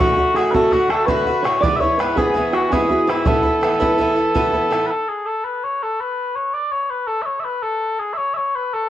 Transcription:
Already playing: F#4
0.00 A2 D3 A3 F#4, bodhran
0.12 G#4
0.16 D3 A3 F#4
0.34 A2 D3 A3 G#4, bodhran
0.38 F#4
0.51 F#4 A4 B4, bodhran
0.55 A2 D3 A3
0.71 A2 D3 A3 F#4, bodhran
0.89 D3 A3 F#4 A4, bodhran
1.06 A2 D3 A3 B4 C#5, bodhran
1.10 F#4 B4
1.27 D3 A3 F#4
1.43 A2 D3 A3 C#5, bodhran
1.47 F#4
1.61 G#2 E3 D5, bodhran
1.65 B3 E4
1.76 E5
1.80 E3 B3 E4 C#5
1.98 G#2 E3 B3 E4 B4, bodhran
2.16 G#2 E3 B3 E4 G#4, bodhran
2.34 G#2 E3 B3 E4, bodhran
2.53 E3 B3 E4 F#4, bodhran
2.70 G#2 E3 B3 E4 G#4, bodhran
2.89 E3 B3 E4 F#4
3.08 G#2 E3 B3 E4, bodhran
3.25 A2 E3 B3 E4 A4, bodhran
3.43 E3 B3 E4
3.61 A2 E3 B3 E4, bodhran
3.66 B4
3.70 A4
3.80 A2 E3 B3 E4, bodhran
3.98 A2 E3 B3 E4, bodhran
4.09 G#4
4.13 E4 A4
4.18 E3 B3
4.35 A2 E3 B3 E4, bodhran
4.52 E3 B3 E4
4.71 A2 E3 B3 E4, bodhran
4.87 B4
4.91 A4
5.08 G#4
5.26 A4
5.44 B4
5.64 C#5
5.83 A4
6.01 B4
6.35 C#5
6.54 D5
6.72 C#5
6.90 B4
7.07 A4
7.22 C#5 E5
7.40 E5
7.44 B4
7.63 A4
7.99 G#4
8.13 E5
8.17 C#5
8.34 C#5 E5
8.55 B4
8.74 A4

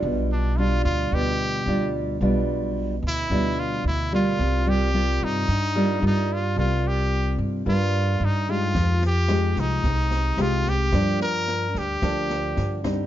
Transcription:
Already playing: G3 D4 F4
0.03 B1 B2
0.33 D4
0.58 G3 D4 F4
0.85 D2 F4
1.12 D2 B2 G4
1.66 D2 G3 D4 F4
2.21 B1 B2 G3 D4 F4
3.03 D2
3.08 E4
3.30 D2 B2 G3 D4 F4
3.60 F4
3.84 D2 E4
4.13 G3 A#3 F4
4.39 C2 C3
4.66 G3 A#3 F4 G4
4.93 G3 A#3 F4
5.21 G2 D#4
5.48 G2
5.75 G3 A#3 F4
6.02 G2 G3 A#3 F4
6.07 D#4
6.33 F4
6.57 C2 C3 G3 A#3 F4
6.87 G4
7.38 G2
7.66 G2 G3 A#3 F4
8.20 G2
8.25 D#4
8.48 G#3 D#4 F4 G4
8.75 F2 F3, kick, snare
9.02 snare
9.07 G4
9.29 G#3 D#4 G4, cross-stick, snare
9.56 C2 D#4, kick, snare
9.84 C2 C3, kick, snare
10.11 snare
10.37 C2 G#3 D#4 G4, cross-stick, snare
10.41 F4
10.65 G4, kick, snare
10.93 G2 F3 A#3 D4, kick, cross-stick, snare
11.20 A#4, snare
11.48 snare
11.75 D2 G4, kick, snare
12.02 D2 D3 F3 A#3 D4, kick, cross-stick, snare
12.30 snare
12.57 G2, snare
12.84 G3 C4 D#4, kick, cross-stick, snare

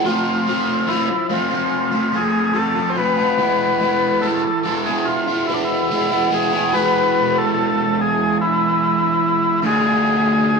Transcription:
0.05 F3 A3 C4 F4
0.47 F3 A3 C4 F4
0.87 F3 A3 C4 E4 F4
1.09 muted overdriven electric guitar stroke
1.29 F3 A3 C4 F4
1.33 F4
1.50 A3 C4 F4
1.91 A3 C4 F4
2.12 F3 A3 C4 F4 G#4
2.53 F3 A3 C4 F4 A4
2.75 A3 C4 F4
2.90 C5
2.96 F3 A3 C4 F4 B4
3.17 A3 C4 F4
3.37 E3 G#3 B3 E4
3.79 E3 G#3 B3 E4
4.21 E3 G#3 B3 E4 A4
4.43 muted overdriven electric guitar stroke
4.63 E3 G#3 B3 E4
4.86 G#3 B3 E4 G#4
5.00 G#4
5.05 F4
5.27 G#3 B3 E4
5.47 E3 G#3 B3 E4
5.54 D4
5.64 E4
5.90 E3 G#3 B3 E4
6.10 G#3 B3 E4
6.31 E3 G#3 B3 E4 G#4
6.52 G#3 B3 E4
6.72 E3 G#3 B3 E4 B4
7.38 A4
8.01 G#4
8.41 E4
9.63 D3 A3 D4 F4 G#4

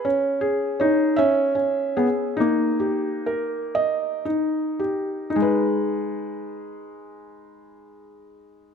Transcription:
0.05 C#4
0.41 G#4
0.80 D#4 C#5
1.16 C#4 E5
1.55 C#4
1.97 B3 G#4
2.37 A#3 D#4
2.80 G4
3.26 A#4
3.75 D#5
4.25 D#4
4.79 G4
5.30 D#4
5.36 G#3 G#4
5.42 B4

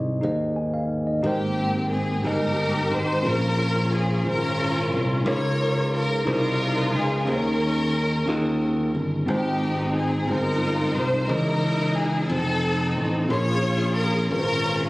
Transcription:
Already playing: C2 G#2 D#4 G#4 C5 D#5
0.21 D#2 D#4 G#4 C5 D#5
0.56 G#5
0.74 F5
1.07 D#5
1.23 G#1 G#2 G#3 A#3 C4 D#4 G4 A#4 C5
1.92 G#4
2.23 G1 G#3 D#4 G4 A#4 D#5
2.27 D#4 G4
2.92 G#1 C5
3.23 A#1 A#2 C#4 F4 G#4 A#4 C5
3.27 C#4 F4
3.94 G#4
4.24 G#1 C#4 F4 G#4 A#4 C5
4.28 C#4 F4
4.93 C2
5.24 C#2 C#3 D#4 F4 G#4 A#4 C#5
5.28 F4 A#4 C#5
5.95 A#4
6.24 C2 D#4 F4 G#4 A#4
6.29 D#4 F4 A#4 C5
6.93 C#2 G#4
7.25 D#2 D#3 C#4 D#4 G#4 A#4 C5
7.29 A#4
7.36 C#5
8.26 D#2 D#3 C#4 D#4 F4 G4
8.30 A#4
8.36 G#4
8.95 G1
9.26 G#1 G#2 G#3 C4 D#4 F4 G4
9.30 C5
9.96 G#4
10.27 G1 C4 D#4 F4 G#4 A#4
10.31 C5
10.95 C2 C5
11.28 C#2 C#3 E3 C#4 D#4 E4 G#4 A#4 C#5 D#5
11.96 G#4
12.28 F1 C4 D#4 F4 A4
12.32 C4 D#4 C5
12.97 A1
13.27 A#1 A#2 C#4 F4 G#4 A#4 C#5
13.31 F4 G#4 C6
13.97 A#4
14.28 G#1 C#4 F4 G#4 A#4 B4
14.39 C5

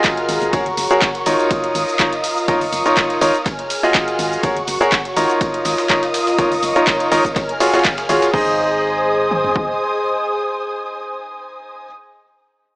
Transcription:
Already playing: F4 F#4 G#4 A#4 D#5 G#5 A#5 F6
0.04 kick, snare, clap, closed hi-hat, ride, tambourine, shaker
0.17 closed hi-hat, tambourine
0.29 G#1, open hi-hat, ride, tambourine, shaker
0.41 F#1, closed hi-hat, tambourine, shaker
0.53 G#1 F#4 G#4 A#4 C#5 F#5 C#6, kick, closed hi-hat, ride, tambourine, shaker
0.64 C#5, closed hi-hat
0.77 F#1, open hi-hat, ride, tambourine, shaker
0.90 F#4 G#4 A#4 C#5, closed hi-hat, tambourine, shaker
1.02 kick, snare, clap, closed hi-hat, ride, tambourine, shaker
1.15 snare, closed hi-hat, tambourine
1.26 G#1 D#4 F4 A#4 C#5, open hi-hat, ride, tambourine, shaker
1.39 closed hi-hat, tambourine, shaker
1.51 F4 F5 D#6, kick, closed hi-hat, ride, tambourine, shaker
1.59 D#5
1.64 closed hi-hat
1.75 G#1, open hi-hat, ride, tambourine, shaker
1.88 tambourine, shaker
1.99 D#4 F4 A#4 C#5, kick, snare, clap, closed hi-hat, ride, tambourine, shaker
2.12 snare, closed hi-hat, tambourine
2.24 open hi-hat, ride, tambourine, shaker
2.37 tambourine, shaker
2.48 G#1 D#4 F4 A#4 C#5 C#6 D#6, kick, closed hi-hat, ride, tambourine, shaker
2.61 C#5, open hi-hat
2.73 F#1, open hi-hat, ride, tambourine, shaker
2.86 D#4 F4 A#4 C#5, closed hi-hat, ride, tambourine, shaker
2.97 kick, snare, clap, closed hi-hat, ride, tambourine, shaker
3.10 closed hi-hat, tambourine
3.21 G#1 D#4 F4 A#4 C#5, open hi-hat, ride, tambourine, shaker
3.34 snare, closed hi-hat, tambourine, shaker
3.46 G#4 G#5 F6, kick, clap, closed hi-hat, ride, tambourine, shaker
3.59 closed hi-hat
3.70 open hi-hat, ride, tambourine, shaker
3.83 F4 F#4 G#4 D#5, tambourine, shaker
3.94 kick, snare, clap, closed hi-hat, ride, tambourine, shaker
4.08 closed hi-hat, tambourine
4.19 G#1, open hi-hat, ride, tambourine, shaker
4.32 tambourine, shaker
4.43 G#1 F#4 G#4 A#4 C#5 F#5 C#6, kick, closed hi-hat, ride, tambourine, shaker
4.56 closed hi-hat
4.67 F#1 C#5, open hi-hat, ride, tambourine, shaker
4.80 F#4 G#4 A#4 C#5, closed hi-hat, tambourine, shaker
4.92 kick, snare, clap, closed hi-hat, ride, tambourine, shaker
5.05 snare, closed hi-hat, tambourine
5.16 G#1 D#4 F4 A#4 C#5, open hi-hat, ride, tambourine, shaker
5.29 closed hi-hat, tambourine, shaker
5.41 F4 A#4 F5 D#6, kick, closed hi-hat, ride, tambourine, shaker
5.54 closed hi-hat
5.65 G#1 D#5, snare, open hi-hat, ride, tambourine, shaker
5.78 snare, ride, tambourine, shaker
5.90 D#4 F4 A#4 C#5, kick, snare, clap, closed hi-hat, ride, tambourine, shaker
6.03 snare, closed hi-hat, ride, tambourine
6.14 snare, open hi-hat, ride, tambourine, shaker
6.27 snare, ride, tambourine, shaker
6.38 G#1 D#4 F4 A#4 C#5 C#6, kick, closed hi-hat, ride, tambourine, shaker
6.50 C#5, open hi-hat
6.62 F#1, open hi-hat, ride, tambourine, shaker
6.76 D#4 F4 A#4 C#5, closed hi-hat, ride, tambourine, shaker
6.87 kick, snare, clap, closed hi-hat, ride, tambourine, shaker
7.00 closed hi-hat, tambourine
7.12 G#1 D#4 F4 A#4 C#5, open hi-hat, ride, tambourine, shaker
7.25 kick, snare, tambourine, shaker
7.36 G#4 G#5 F6, kick, clap, closed hi-hat, ride, tambourine, shaker
7.49 F5, closed hi-hat
7.60 F4 F#4 G#4 C#5, snare, open hi-hat, ride, tambourine, shaker
7.67 snare, ride
7.73 F4 F#4 G#4 C#5, snare, ride, tambourine, shaker
7.79 snare, ride
7.85 kick, snare, clap, closed hi-hat, ride, tambourine, shaker
7.97 snare, closed hi-hat, ride, tambourine
8.09 G#1 F4 F#4 G#4 C#5, snare, open hi-hat, ride, tambourine, shaker
8.22 snare, closed hi-hat, ride, tambourine, shaker
8.33 G#1 D#4 G#4 C5 D#5 G#5 D#6, kick, crash
8.41 D#5
8.49 C6
9.31 mid tom
9.44 floor tom
9.56 kick

